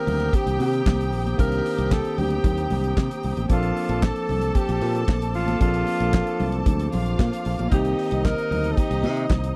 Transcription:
Already playing: D#3 A#3 C4 D4 G4 A#4 C5 G5 A#5 D#6
0.07 D2, open hi-hat, low conga
0.20 closed hi-hat
0.33 G4, kick, closed hi-hat, muted conga
0.46 C2, closed hi-hat
0.60 C3 G4, open hi-hat, muted conga
0.73 closed hi-hat
0.86 C2, kick, snare, clap, high conga
1.01 closed hi-hat
1.13 A#1, open hi-hat
1.26 closed hi-hat, high conga
1.37 C2 D#3 A#3 C4 D4 G4 A#4, kick, closed hi-hat, muted conga
1.52 closed hi-hat
1.66 open hi-hat, muted conga
1.78 C2, closed hi-hat
1.91 A4, kick, snare, clap, high conga
2.05 closed hi-hat
2.18 D2 G4, open hi-hat, low conga
2.30 closed hi-hat
2.44 D#2, kick, closed hi-hat, muted conga, low conga
2.57 closed hi-hat
2.70 C2, open hi-hat, muted conga, low conga
2.84 closed hi-hat
2.97 C3, kick, snare, clap, high conga
3.11 closed hi-hat
3.23 C2, open hi-hat
3.37 A1, closed hi-hat, high conga
3.49 A#1 F3 A#3 C4 D4 F4 A4 A5 D6, kick, closed hi-hat, muted conga
3.63 closed hi-hat
3.77 open hi-hat
3.89 A#1, closed hi-hat
4.03 A4, kick, snare, clap, high conga
4.16 closed hi-hat
4.29 C2, open hi-hat, low conga
4.41 closed hi-hat
4.55 G4, kick, closed hi-hat, muted conga
4.69 A#1, closed hi-hat
4.82 A#2, open hi-hat, muted conga
4.95 closed hi-hat
5.08 A#1, kick, snare, clap, high conga
5.22 closed hi-hat
5.34 A1 F4, open hi-hat
5.48 closed hi-hat, high conga
5.59 A#1 F3 A#3 C4 D4 F4 G#4, kick, closed hi-hat, muted conga
5.68 A4
5.74 closed hi-hat
5.87 open hi-hat, muted conga
6.00 A#1, closed hi-hat
6.13 kick, snare, clap, high conga
6.27 closed hi-hat
6.40 C2, open hi-hat, low conga
6.52 closed hi-hat
6.66 D2, kick, closed hi-hat, muted conga, low conga
6.79 closed hi-hat
6.92 A#1 F4 F5, open hi-hat, muted conga, low conga
7.06 closed hi-hat
7.19 A#2, kick, snare, clap, high conga
7.33 closed hi-hat
7.45 A#1, open hi-hat
7.59 A#1, closed hi-hat, high conga
7.70 C2 D#3 A#3 C4 D#4 G4 C5 D#5 A#5 D#6, kick, closed hi-hat, muted conga
7.85 closed hi-hat
7.99 open hi-hat
8.11 C2, closed hi-hat
8.25 A#4, kick, snare, clap, high conga
8.38 closed hi-hat
8.51 D2, open hi-hat, low conga
8.64 closed hi-hat
8.71 A4
8.77 G4, kick, closed hi-hat, muted conga
8.91 C2, closed hi-hat
9.03 C3, open hi-hat, muted conga
9.17 closed hi-hat
9.30 C2, kick, snare, clap, high conga
9.44 closed hi-hat

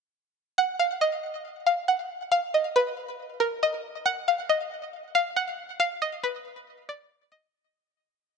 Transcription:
0.58 F#5
0.79 F5
1.01 D#5
1.67 F5
1.88 F#5
2.32 F5
2.54 D#5
2.76 B4
3.40 A#4
3.63 D#5
4.06 F#5
4.28 F5
4.49 D#5
5.15 F5
5.36 F#5
5.80 F5
6.02 D#5
6.24 B4
6.89 D5
7.32 D#5

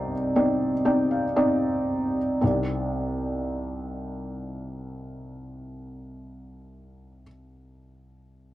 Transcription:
Already playing: C2 C3 C4 D#4 D5
0.36 C4 D#4 D5
0.85 C4 D#4 D5 G5
1.11 F5
1.36 C4 D#4 D5 D#5
2.41 C2 C4 D#4
2.45 D5

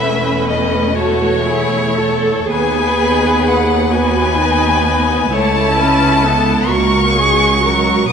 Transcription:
Already playing: E1 E2 A3 C#4 B4 E5
0.48 D#5
0.96 F#4 A4 C#5
1.46 E4 G#4
1.98 A4
2.48 D#2 B3 G#4 B4 G#5
3.47 F#5
3.91 B3 F#4 B4 G#5
4.38 D#4
4.85 D#4
5.32 C#2 A3 E4 C#5 A5
5.76 C#4 B4
6.21 B3 A4
6.69 C#2 A#3 F#4 A#4 C#6
7.14 G#3 G#4
7.62 F#3 A#4
8.07 B1 B4

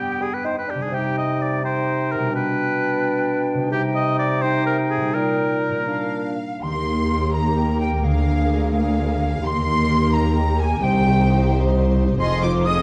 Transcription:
Already playing: G2 G3 B3 D4 G4 G5
0.21 G3 G#4
0.34 B4
0.45 D#4 C5
0.59 B4
0.68 D4 G4
0.74 C3
0.79 G3 G#4
0.83 D#4
0.88 C3 G4
0.92 D#4 G4 G5
1.18 D#5
1.42 D5
1.63 D#4 C5 G5
2.12 B2 A#4
2.19 G3
2.24 D4
2.28 G4
2.33 B2 D4 B4 G5
3.54 C3
3.59 G3
3.63 D#4
3.67 G4
3.72 C3 D#4 G4 G5
3.95 D#5
4.19 D5
4.42 D#4 C5 G5
4.66 A#4
4.90 G#4
4.97 A#2
5.01 G3
5.06 D#4
5.10 G4 A#4
5.14 A#2 D#4 G5
5.71 A#2
5.75 A#3
5.80 D4
5.84 F4
5.88 A#2 D4 F5
6.62 D#2 D#3 A#3 G4 A#4 C6
6.87 D#4
7.10 A#4
7.33 D#5 A#5
7.57 G5
7.80 A#4 G5
8.03 D2 D3 G#4 F5
8.27 A#3
8.50 G#4
8.73 A#4 F5
8.96 F5
9.20 G#4
9.43 D#2 D#3 A#3 G4 A#4 C6
9.67 D#4
9.90 A#4
10.13 D#5 A#5
10.37 G5
10.59 A#4 G#5
10.82 C2 C3 D#4 C5 G5
11.05 C4
11.29 G4
11.52 C5
11.75 D#5
11.97 G4
12.20 F1 F2 F4 G#4 D#5 C6
12.42 C4 D#4 F4 C5 D6
12.65 F4 G#4 D#5 D#6

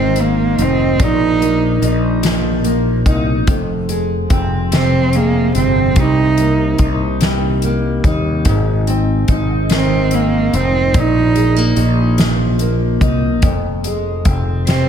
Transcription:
Already playing: G#1 G#2 D#3 C4 D#4
0.16 A#3 C4, closed hi-hat
0.59 F1 C4 D#4, closed hi-hat
1.00 A#1 A#2 D#4, kick, closed hi-hat
1.40 A#3, closed hi-hat
1.82 A#1 D#4, closed hi-hat
2.23 F3, snare, closed hi-hat
2.64 A#3, closed hi-hat
3.06 C2 D#4, kick, closed hi-hat
3.47 F1 F2, kick, closed hi-hat
3.89 G#3, closed hi-hat
4.30 F1 C4, kick, closed hi-hat
4.72 C3 C4, snare, closed hi-hat
5.13 G#3 A#3, closed hi-hat
5.55 G1 C4, closed hi-hat
5.96 C2 C3 D#4, kick, closed hi-hat
6.38 A#3, closed hi-hat
6.78 C2 D#4, kick, closed hi-hat
7.21 G3, snare, closed hi-hat
7.62 A#3, closed hi-hat
8.04 D#2 D#4, kick, closed hi-hat
8.45 G#1 G#2, kick, closed hi-hat
8.87 C4, closed hi-hat
9.28 G#1 D#4, kick, closed hi-hat
9.70 D#3 C4, snare, closed hi-hat
10.11 A#3 C4, closed hi-hat
10.53 F1 C4 D#4, closed hi-hat
10.94 A#1 A#2 D#4, kick, closed hi-hat
11.35 G#3, closed hi-hat
11.56 A#3
11.76 A#1 D#4, closed hi-hat
12.18 F3, snare, closed hi-hat
12.59 A#3, closed hi-hat
13.01 C2 D#4, kick, closed hi-hat
13.42 F1 F2, kick, closed hi-hat
13.84 G#3, closed hi-hat
14.25 F1 C4, kick, closed hi-hat
14.67 C3 C4, snare, closed hi-hat

